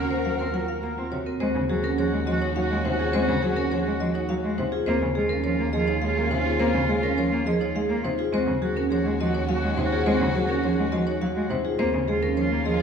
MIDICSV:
0, 0, Header, 1, 7, 480
1, 0, Start_track
1, 0, Tempo, 576923
1, 1169, Time_signature, 3, 2, 24, 8
1, 10669, End_track
2, 0, Start_track
2, 0, Title_t, "Marimba"
2, 0, Program_c, 0, 12
2, 0, Note_on_c, 0, 70, 65
2, 88, Note_on_c, 0, 72, 85
2, 126, Note_off_c, 0, 70, 0
2, 207, Note_on_c, 0, 77, 71
2, 245, Note_off_c, 0, 72, 0
2, 364, Note_off_c, 0, 77, 0
2, 448, Note_on_c, 0, 78, 75
2, 568, Note_on_c, 0, 77, 67
2, 605, Note_off_c, 0, 78, 0
2, 691, Note_on_c, 0, 82, 69
2, 725, Note_off_c, 0, 77, 0
2, 846, Note_off_c, 0, 82, 0
2, 930, Note_on_c, 0, 73, 70
2, 1052, Note_on_c, 0, 70, 64
2, 1086, Note_off_c, 0, 73, 0
2, 1168, Note_on_c, 0, 72, 95
2, 1206, Note_off_c, 0, 70, 0
2, 1325, Note_off_c, 0, 72, 0
2, 1411, Note_on_c, 0, 68, 83
2, 1531, Note_on_c, 0, 70, 93
2, 1566, Note_off_c, 0, 68, 0
2, 1651, Note_on_c, 0, 73, 83
2, 1686, Note_off_c, 0, 70, 0
2, 1806, Note_off_c, 0, 73, 0
2, 1888, Note_on_c, 0, 75, 90
2, 2011, Note_on_c, 0, 73, 84
2, 2045, Note_off_c, 0, 75, 0
2, 2129, Note_on_c, 0, 77, 81
2, 2166, Note_off_c, 0, 73, 0
2, 2285, Note_off_c, 0, 77, 0
2, 2374, Note_on_c, 0, 72, 80
2, 2489, Note_on_c, 0, 68, 81
2, 2527, Note_off_c, 0, 72, 0
2, 2606, Note_on_c, 0, 72, 101
2, 2645, Note_off_c, 0, 68, 0
2, 2764, Note_off_c, 0, 72, 0
2, 2847, Note_on_c, 0, 68, 77
2, 2966, Note_on_c, 0, 70, 98
2, 3005, Note_off_c, 0, 68, 0
2, 3091, Note_on_c, 0, 73, 81
2, 3124, Note_off_c, 0, 70, 0
2, 3246, Note_off_c, 0, 73, 0
2, 3331, Note_on_c, 0, 75, 95
2, 3455, Note_on_c, 0, 73, 78
2, 3486, Note_off_c, 0, 75, 0
2, 3568, Note_on_c, 0, 77, 84
2, 3607, Note_off_c, 0, 73, 0
2, 3725, Note_off_c, 0, 77, 0
2, 3811, Note_on_c, 0, 72, 81
2, 3927, Note_on_c, 0, 68, 86
2, 3966, Note_off_c, 0, 72, 0
2, 4047, Note_on_c, 0, 72, 95
2, 4085, Note_off_c, 0, 68, 0
2, 4204, Note_off_c, 0, 72, 0
2, 4286, Note_on_c, 0, 68, 79
2, 4404, Note_on_c, 0, 70, 93
2, 4444, Note_off_c, 0, 68, 0
2, 4524, Note_on_c, 0, 73, 81
2, 4563, Note_off_c, 0, 70, 0
2, 4683, Note_off_c, 0, 73, 0
2, 4766, Note_on_c, 0, 75, 91
2, 4889, Note_on_c, 0, 73, 78
2, 4924, Note_off_c, 0, 75, 0
2, 5005, Note_on_c, 0, 77, 80
2, 5045, Note_off_c, 0, 73, 0
2, 5164, Note_off_c, 0, 77, 0
2, 5251, Note_on_c, 0, 72, 84
2, 5372, Note_on_c, 0, 68, 82
2, 5406, Note_off_c, 0, 72, 0
2, 5487, Note_on_c, 0, 72, 99
2, 5526, Note_off_c, 0, 68, 0
2, 5644, Note_off_c, 0, 72, 0
2, 5735, Note_on_c, 0, 68, 74
2, 5850, Note_on_c, 0, 70, 94
2, 5887, Note_off_c, 0, 68, 0
2, 5973, Note_on_c, 0, 73, 82
2, 6005, Note_off_c, 0, 70, 0
2, 6127, Note_off_c, 0, 73, 0
2, 6214, Note_on_c, 0, 75, 95
2, 6335, Note_on_c, 0, 73, 81
2, 6367, Note_off_c, 0, 75, 0
2, 6454, Note_on_c, 0, 77, 78
2, 6487, Note_off_c, 0, 73, 0
2, 6607, Note_off_c, 0, 77, 0
2, 6695, Note_on_c, 0, 72, 85
2, 6813, Note_on_c, 0, 68, 87
2, 6847, Note_off_c, 0, 72, 0
2, 6936, Note_on_c, 0, 72, 100
2, 6966, Note_off_c, 0, 68, 0
2, 7088, Note_off_c, 0, 72, 0
2, 7171, Note_on_c, 0, 68, 79
2, 7296, Note_on_c, 0, 70, 98
2, 7326, Note_off_c, 0, 68, 0
2, 7421, Note_on_c, 0, 73, 86
2, 7448, Note_off_c, 0, 70, 0
2, 7569, Note_off_c, 0, 73, 0
2, 7660, Note_on_c, 0, 75, 96
2, 7776, Note_on_c, 0, 73, 83
2, 7809, Note_off_c, 0, 75, 0
2, 7892, Note_on_c, 0, 77, 82
2, 7927, Note_off_c, 0, 73, 0
2, 8046, Note_off_c, 0, 77, 0
2, 8132, Note_on_c, 0, 72, 85
2, 8258, Note_on_c, 0, 68, 87
2, 8286, Note_off_c, 0, 72, 0
2, 8372, Note_on_c, 0, 72, 104
2, 8408, Note_off_c, 0, 68, 0
2, 8526, Note_off_c, 0, 72, 0
2, 8613, Note_on_c, 0, 68, 80
2, 8726, Note_on_c, 0, 70, 100
2, 8767, Note_off_c, 0, 68, 0
2, 8849, Note_on_c, 0, 73, 84
2, 8884, Note_off_c, 0, 70, 0
2, 9005, Note_off_c, 0, 73, 0
2, 9087, Note_on_c, 0, 75, 94
2, 9209, Note_on_c, 0, 73, 87
2, 9244, Note_off_c, 0, 75, 0
2, 9332, Note_on_c, 0, 77, 82
2, 9365, Note_off_c, 0, 73, 0
2, 9486, Note_off_c, 0, 77, 0
2, 9573, Note_on_c, 0, 72, 86
2, 9691, Note_on_c, 0, 68, 85
2, 9726, Note_off_c, 0, 72, 0
2, 9810, Note_on_c, 0, 72, 104
2, 9846, Note_off_c, 0, 68, 0
2, 9965, Note_off_c, 0, 72, 0
2, 10053, Note_on_c, 0, 68, 80
2, 10172, Note_on_c, 0, 70, 97
2, 10207, Note_off_c, 0, 68, 0
2, 10293, Note_on_c, 0, 73, 82
2, 10326, Note_off_c, 0, 70, 0
2, 10447, Note_off_c, 0, 73, 0
2, 10528, Note_on_c, 0, 75, 86
2, 10669, Note_off_c, 0, 75, 0
2, 10669, End_track
3, 0, Start_track
3, 0, Title_t, "Oboe"
3, 0, Program_c, 1, 68
3, 0, Note_on_c, 1, 70, 93
3, 1016, Note_off_c, 1, 70, 0
3, 1177, Note_on_c, 1, 66, 50
3, 1350, Note_off_c, 1, 66, 0
3, 1425, Note_on_c, 1, 66, 63
3, 1599, Note_off_c, 1, 66, 0
3, 1669, Note_on_c, 1, 66, 73
3, 1846, Note_off_c, 1, 66, 0
3, 1922, Note_on_c, 1, 66, 79
3, 2098, Note_off_c, 1, 66, 0
3, 2169, Note_on_c, 1, 66, 91
3, 2346, Note_off_c, 1, 66, 0
3, 2429, Note_on_c, 1, 66, 93
3, 2603, Note_off_c, 1, 66, 0
3, 2678, Note_on_c, 1, 66, 90
3, 2852, Note_off_c, 1, 66, 0
3, 2927, Note_on_c, 1, 66, 86
3, 3102, Note_off_c, 1, 66, 0
3, 3176, Note_on_c, 1, 66, 69
3, 3352, Note_off_c, 1, 66, 0
3, 3427, Note_on_c, 1, 66, 57
3, 3602, Note_off_c, 1, 66, 0
3, 3676, Note_on_c, 1, 66, 46
3, 3852, Note_off_c, 1, 66, 0
3, 4045, Note_on_c, 1, 65, 47
3, 4222, Note_off_c, 1, 65, 0
3, 4299, Note_on_c, 1, 65, 61
3, 4475, Note_off_c, 1, 65, 0
3, 4548, Note_on_c, 1, 65, 70
3, 4725, Note_off_c, 1, 65, 0
3, 4806, Note_on_c, 1, 65, 82
3, 4980, Note_off_c, 1, 65, 0
3, 5055, Note_on_c, 1, 65, 84
3, 5230, Note_off_c, 1, 65, 0
3, 5304, Note_on_c, 1, 65, 92
3, 5480, Note_off_c, 1, 65, 0
3, 5561, Note_on_c, 1, 65, 89
3, 5734, Note_off_c, 1, 65, 0
3, 5810, Note_on_c, 1, 65, 85
3, 5984, Note_off_c, 1, 65, 0
3, 6061, Note_on_c, 1, 65, 69
3, 6235, Note_off_c, 1, 65, 0
3, 6310, Note_on_c, 1, 65, 56
3, 6485, Note_off_c, 1, 65, 0
3, 6561, Note_on_c, 1, 65, 46
3, 6735, Note_off_c, 1, 65, 0
3, 6933, Note_on_c, 1, 66, 50
3, 7108, Note_off_c, 1, 66, 0
3, 7188, Note_on_c, 1, 66, 64
3, 7361, Note_off_c, 1, 66, 0
3, 7436, Note_on_c, 1, 66, 75
3, 7610, Note_off_c, 1, 66, 0
3, 7692, Note_on_c, 1, 66, 80
3, 7864, Note_off_c, 1, 66, 0
3, 7943, Note_on_c, 1, 66, 97
3, 8115, Note_off_c, 1, 66, 0
3, 8195, Note_on_c, 1, 66, 95
3, 8366, Note_off_c, 1, 66, 0
3, 8443, Note_on_c, 1, 66, 96
3, 8616, Note_off_c, 1, 66, 0
3, 8695, Note_on_c, 1, 66, 89
3, 8867, Note_off_c, 1, 66, 0
3, 8941, Note_on_c, 1, 66, 75
3, 9115, Note_off_c, 1, 66, 0
3, 9194, Note_on_c, 1, 66, 64
3, 9367, Note_off_c, 1, 66, 0
3, 9443, Note_on_c, 1, 66, 50
3, 9617, Note_off_c, 1, 66, 0
3, 9816, Note_on_c, 1, 65, 49
3, 9989, Note_off_c, 1, 65, 0
3, 10073, Note_on_c, 1, 65, 66
3, 10244, Note_off_c, 1, 65, 0
3, 10321, Note_on_c, 1, 65, 72
3, 10493, Note_off_c, 1, 65, 0
3, 10573, Note_on_c, 1, 65, 80
3, 10669, Note_off_c, 1, 65, 0
3, 10669, End_track
4, 0, Start_track
4, 0, Title_t, "String section"
4, 0, Program_c, 2, 48
4, 0, Note_on_c, 2, 66, 98
4, 0, Note_on_c, 2, 70, 99
4, 1016, Note_off_c, 2, 66, 0
4, 1016, Note_off_c, 2, 70, 0
4, 1176, Note_on_c, 2, 61, 94
4, 1176, Note_on_c, 2, 66, 92
4, 3899, Note_off_c, 2, 61, 0
4, 3899, Note_off_c, 2, 66, 0
4, 4045, Note_on_c, 2, 61, 91
4, 4047, Note_on_c, 2, 65, 93
4, 6774, Note_off_c, 2, 61, 0
4, 6775, Note_off_c, 2, 65, 0
4, 6933, Note_on_c, 2, 61, 99
4, 6934, Note_on_c, 2, 66, 103
4, 9658, Note_off_c, 2, 61, 0
4, 9658, Note_off_c, 2, 66, 0
4, 9818, Note_on_c, 2, 65, 92
4, 9819, Note_on_c, 2, 61, 97
4, 10669, Note_off_c, 2, 61, 0
4, 10669, Note_off_c, 2, 65, 0
4, 10669, End_track
5, 0, Start_track
5, 0, Title_t, "Vibraphone"
5, 0, Program_c, 3, 11
5, 0, Note_on_c, 3, 61, 85
5, 83, Note_on_c, 3, 72, 66
5, 123, Note_off_c, 3, 61, 0
5, 243, Note_off_c, 3, 72, 0
5, 325, Note_on_c, 3, 70, 83
5, 448, Note_on_c, 3, 65, 66
5, 484, Note_off_c, 3, 70, 0
5, 565, Note_on_c, 3, 70, 69
5, 605, Note_off_c, 3, 65, 0
5, 724, Note_off_c, 3, 70, 0
5, 807, Note_on_c, 3, 65, 62
5, 931, Note_on_c, 3, 66, 71
5, 964, Note_off_c, 3, 65, 0
5, 1050, Note_on_c, 3, 60, 79
5, 1086, Note_off_c, 3, 66, 0
5, 1159, Note_off_c, 3, 60, 0
5, 1169, Note_on_c, 3, 60, 97
5, 1325, Note_off_c, 3, 60, 0
5, 1408, Note_on_c, 3, 66, 85
5, 1526, Note_on_c, 3, 61, 100
5, 1565, Note_off_c, 3, 66, 0
5, 1649, Note_on_c, 3, 68, 80
5, 1684, Note_off_c, 3, 61, 0
5, 1805, Note_off_c, 3, 68, 0
5, 1889, Note_on_c, 3, 66, 100
5, 2011, Note_on_c, 3, 63, 82
5, 2045, Note_off_c, 3, 66, 0
5, 2130, Note_on_c, 3, 66, 82
5, 2166, Note_off_c, 3, 63, 0
5, 2286, Note_off_c, 3, 66, 0
5, 2370, Note_on_c, 3, 63, 82
5, 2487, Note_on_c, 3, 65, 74
5, 2525, Note_off_c, 3, 63, 0
5, 2608, Note_on_c, 3, 60, 97
5, 2644, Note_off_c, 3, 65, 0
5, 2765, Note_off_c, 3, 60, 0
5, 2850, Note_on_c, 3, 66, 79
5, 2972, Note_on_c, 3, 61, 93
5, 3006, Note_off_c, 3, 66, 0
5, 3092, Note_on_c, 3, 68, 80
5, 3126, Note_off_c, 3, 61, 0
5, 3246, Note_off_c, 3, 68, 0
5, 3332, Note_on_c, 3, 66, 93
5, 3450, Note_on_c, 3, 63, 75
5, 3486, Note_off_c, 3, 66, 0
5, 3575, Note_on_c, 3, 66, 83
5, 3605, Note_off_c, 3, 63, 0
5, 3727, Note_off_c, 3, 66, 0
5, 3812, Note_on_c, 3, 63, 80
5, 3931, Note_on_c, 3, 65, 82
5, 3966, Note_off_c, 3, 63, 0
5, 4050, Note_on_c, 3, 60, 94
5, 4086, Note_off_c, 3, 65, 0
5, 4205, Note_off_c, 3, 60, 0
5, 4288, Note_on_c, 3, 68, 75
5, 4411, Note_on_c, 3, 61, 93
5, 4445, Note_off_c, 3, 68, 0
5, 4528, Note_on_c, 3, 70, 78
5, 4566, Note_off_c, 3, 61, 0
5, 4685, Note_off_c, 3, 70, 0
5, 4771, Note_on_c, 3, 68, 96
5, 4888, Note_on_c, 3, 63, 81
5, 4926, Note_off_c, 3, 68, 0
5, 5007, Note_on_c, 3, 68, 74
5, 5045, Note_off_c, 3, 63, 0
5, 5164, Note_off_c, 3, 68, 0
5, 5248, Note_on_c, 3, 63, 85
5, 5364, Note_on_c, 3, 65, 79
5, 5405, Note_off_c, 3, 63, 0
5, 5488, Note_on_c, 3, 60, 99
5, 5523, Note_off_c, 3, 65, 0
5, 5645, Note_off_c, 3, 60, 0
5, 5725, Note_on_c, 3, 68, 80
5, 5847, Note_on_c, 3, 61, 100
5, 5884, Note_off_c, 3, 68, 0
5, 5968, Note_on_c, 3, 70, 80
5, 6004, Note_off_c, 3, 61, 0
5, 6125, Note_off_c, 3, 70, 0
5, 6208, Note_on_c, 3, 68, 97
5, 6330, Note_on_c, 3, 63, 81
5, 6365, Note_off_c, 3, 68, 0
5, 6449, Note_on_c, 3, 68, 80
5, 6485, Note_off_c, 3, 63, 0
5, 6605, Note_off_c, 3, 68, 0
5, 6689, Note_on_c, 3, 63, 81
5, 6807, Note_on_c, 3, 65, 80
5, 6845, Note_off_c, 3, 63, 0
5, 6928, Note_on_c, 3, 60, 101
5, 6964, Note_off_c, 3, 65, 0
5, 7085, Note_off_c, 3, 60, 0
5, 7171, Note_on_c, 3, 66, 78
5, 7292, Note_on_c, 3, 61, 104
5, 7326, Note_off_c, 3, 66, 0
5, 7409, Note_on_c, 3, 68, 85
5, 7446, Note_off_c, 3, 61, 0
5, 7565, Note_off_c, 3, 68, 0
5, 7655, Note_on_c, 3, 66, 99
5, 7774, Note_on_c, 3, 63, 80
5, 7807, Note_off_c, 3, 66, 0
5, 7894, Note_on_c, 3, 66, 84
5, 7927, Note_off_c, 3, 63, 0
5, 8047, Note_off_c, 3, 66, 0
5, 8134, Note_on_c, 3, 63, 86
5, 8256, Note_on_c, 3, 65, 77
5, 8287, Note_off_c, 3, 63, 0
5, 8376, Note_on_c, 3, 60, 99
5, 8407, Note_off_c, 3, 65, 0
5, 8527, Note_off_c, 3, 60, 0
5, 8615, Note_on_c, 3, 66, 82
5, 8732, Note_on_c, 3, 61, 102
5, 8767, Note_off_c, 3, 66, 0
5, 8854, Note_on_c, 3, 68, 80
5, 8886, Note_off_c, 3, 61, 0
5, 9007, Note_off_c, 3, 68, 0
5, 9090, Note_on_c, 3, 66, 97
5, 9211, Note_on_c, 3, 63, 79
5, 9245, Note_off_c, 3, 66, 0
5, 9330, Note_on_c, 3, 66, 86
5, 9366, Note_off_c, 3, 63, 0
5, 9485, Note_off_c, 3, 66, 0
5, 9570, Note_on_c, 3, 63, 85
5, 9689, Note_on_c, 3, 65, 83
5, 9726, Note_off_c, 3, 63, 0
5, 9806, Note_on_c, 3, 60, 101
5, 9845, Note_off_c, 3, 65, 0
5, 9964, Note_off_c, 3, 60, 0
5, 10047, Note_on_c, 3, 68, 79
5, 10169, Note_on_c, 3, 61, 93
5, 10204, Note_off_c, 3, 68, 0
5, 10292, Note_on_c, 3, 70, 78
5, 10325, Note_off_c, 3, 61, 0
5, 10446, Note_off_c, 3, 70, 0
5, 10532, Note_on_c, 3, 68, 92
5, 10669, Note_off_c, 3, 68, 0
5, 10669, End_track
6, 0, Start_track
6, 0, Title_t, "Cello"
6, 0, Program_c, 4, 42
6, 204, Note_on_c, 4, 54, 70
6, 296, Note_off_c, 4, 54, 0
6, 328, Note_on_c, 4, 60, 68
6, 418, Note_off_c, 4, 60, 0
6, 443, Note_on_c, 4, 54, 80
6, 535, Note_off_c, 4, 54, 0
6, 688, Note_on_c, 4, 58, 62
6, 779, Note_off_c, 4, 58, 0
6, 811, Note_on_c, 4, 60, 77
6, 900, Note_off_c, 4, 60, 0
6, 928, Note_on_c, 4, 48, 63
6, 1018, Note_off_c, 4, 48, 0
6, 1171, Note_on_c, 4, 56, 96
6, 1260, Note_off_c, 4, 56, 0
6, 1292, Note_on_c, 4, 49, 81
6, 1381, Note_off_c, 4, 49, 0
6, 1409, Note_on_c, 4, 54, 86
6, 1499, Note_off_c, 4, 54, 0
6, 1648, Note_on_c, 4, 53, 84
6, 1738, Note_off_c, 4, 53, 0
6, 1766, Note_on_c, 4, 56, 78
6, 1857, Note_off_c, 4, 56, 0
6, 1887, Note_on_c, 4, 53, 94
6, 1978, Note_off_c, 4, 53, 0
6, 2130, Note_on_c, 4, 54, 76
6, 2220, Note_off_c, 4, 54, 0
6, 2251, Note_on_c, 4, 56, 95
6, 2340, Note_off_c, 4, 56, 0
6, 2371, Note_on_c, 4, 48, 81
6, 2461, Note_off_c, 4, 48, 0
6, 2612, Note_on_c, 4, 56, 99
6, 2701, Note_off_c, 4, 56, 0
6, 2735, Note_on_c, 4, 49, 83
6, 2823, Note_off_c, 4, 49, 0
6, 2853, Note_on_c, 4, 54, 88
6, 2941, Note_off_c, 4, 54, 0
6, 3091, Note_on_c, 4, 53, 78
6, 3180, Note_off_c, 4, 53, 0
6, 3215, Note_on_c, 4, 56, 80
6, 3303, Note_off_c, 4, 56, 0
6, 3331, Note_on_c, 4, 53, 94
6, 3420, Note_off_c, 4, 53, 0
6, 3576, Note_on_c, 4, 54, 78
6, 3664, Note_off_c, 4, 54, 0
6, 3695, Note_on_c, 4, 56, 93
6, 3783, Note_off_c, 4, 56, 0
6, 3816, Note_on_c, 4, 48, 76
6, 3904, Note_off_c, 4, 48, 0
6, 4056, Note_on_c, 4, 58, 96
6, 4143, Note_off_c, 4, 58, 0
6, 4175, Note_on_c, 4, 49, 83
6, 4263, Note_off_c, 4, 49, 0
6, 4296, Note_on_c, 4, 56, 82
6, 4383, Note_off_c, 4, 56, 0
6, 4535, Note_on_c, 4, 53, 83
6, 4623, Note_off_c, 4, 53, 0
6, 4654, Note_on_c, 4, 58, 77
6, 4742, Note_off_c, 4, 58, 0
6, 4772, Note_on_c, 4, 53, 96
6, 4861, Note_off_c, 4, 53, 0
6, 5013, Note_on_c, 4, 56, 74
6, 5101, Note_off_c, 4, 56, 0
6, 5130, Note_on_c, 4, 58, 93
6, 5220, Note_off_c, 4, 58, 0
6, 5247, Note_on_c, 4, 48, 79
6, 5338, Note_off_c, 4, 48, 0
6, 5487, Note_on_c, 4, 58, 97
6, 5578, Note_off_c, 4, 58, 0
6, 5609, Note_on_c, 4, 49, 80
6, 5699, Note_off_c, 4, 49, 0
6, 5725, Note_on_c, 4, 56, 86
6, 5817, Note_off_c, 4, 56, 0
6, 5970, Note_on_c, 4, 53, 85
6, 6060, Note_off_c, 4, 53, 0
6, 6091, Note_on_c, 4, 58, 82
6, 6181, Note_off_c, 4, 58, 0
6, 6203, Note_on_c, 4, 53, 94
6, 6295, Note_off_c, 4, 53, 0
6, 6447, Note_on_c, 4, 56, 79
6, 6538, Note_off_c, 4, 56, 0
6, 6562, Note_on_c, 4, 58, 91
6, 6655, Note_off_c, 4, 58, 0
6, 6687, Note_on_c, 4, 48, 83
6, 6778, Note_off_c, 4, 48, 0
6, 6925, Note_on_c, 4, 56, 96
6, 7017, Note_off_c, 4, 56, 0
6, 7047, Note_on_c, 4, 49, 81
6, 7138, Note_off_c, 4, 49, 0
6, 7166, Note_on_c, 4, 54, 85
6, 7257, Note_off_c, 4, 54, 0
6, 7409, Note_on_c, 4, 53, 88
6, 7499, Note_off_c, 4, 53, 0
6, 7529, Note_on_c, 4, 56, 83
6, 7619, Note_off_c, 4, 56, 0
6, 7650, Note_on_c, 4, 53, 97
6, 7739, Note_off_c, 4, 53, 0
6, 7892, Note_on_c, 4, 54, 78
6, 7981, Note_off_c, 4, 54, 0
6, 8011, Note_on_c, 4, 56, 100
6, 8101, Note_off_c, 4, 56, 0
6, 8127, Note_on_c, 4, 48, 86
6, 8218, Note_off_c, 4, 48, 0
6, 8370, Note_on_c, 4, 56, 108
6, 8460, Note_off_c, 4, 56, 0
6, 8492, Note_on_c, 4, 49, 87
6, 8581, Note_off_c, 4, 49, 0
6, 8612, Note_on_c, 4, 54, 88
6, 8701, Note_off_c, 4, 54, 0
6, 8850, Note_on_c, 4, 53, 92
6, 8940, Note_off_c, 4, 53, 0
6, 8975, Note_on_c, 4, 56, 85
6, 9063, Note_off_c, 4, 56, 0
6, 9089, Note_on_c, 4, 53, 102
6, 9179, Note_off_c, 4, 53, 0
6, 9330, Note_on_c, 4, 54, 81
6, 9420, Note_off_c, 4, 54, 0
6, 9449, Note_on_c, 4, 56, 94
6, 9539, Note_off_c, 4, 56, 0
6, 9567, Note_on_c, 4, 48, 84
6, 9658, Note_off_c, 4, 48, 0
6, 9810, Note_on_c, 4, 58, 99
6, 9899, Note_off_c, 4, 58, 0
6, 9931, Note_on_c, 4, 49, 81
6, 10020, Note_off_c, 4, 49, 0
6, 10047, Note_on_c, 4, 56, 86
6, 10138, Note_off_c, 4, 56, 0
6, 10287, Note_on_c, 4, 53, 81
6, 10378, Note_off_c, 4, 53, 0
6, 10407, Note_on_c, 4, 58, 77
6, 10498, Note_off_c, 4, 58, 0
6, 10527, Note_on_c, 4, 53, 91
6, 10618, Note_off_c, 4, 53, 0
6, 10669, End_track
7, 0, Start_track
7, 0, Title_t, "Double bass"
7, 0, Program_c, 5, 43
7, 0, Note_on_c, 5, 39, 79
7, 1039, Note_off_c, 5, 39, 0
7, 1172, Note_on_c, 5, 39, 77
7, 3921, Note_off_c, 5, 39, 0
7, 4051, Note_on_c, 5, 39, 78
7, 6801, Note_off_c, 5, 39, 0
7, 6933, Note_on_c, 5, 39, 80
7, 9682, Note_off_c, 5, 39, 0
7, 9818, Note_on_c, 5, 39, 80
7, 10669, Note_off_c, 5, 39, 0
7, 10669, End_track
0, 0, End_of_file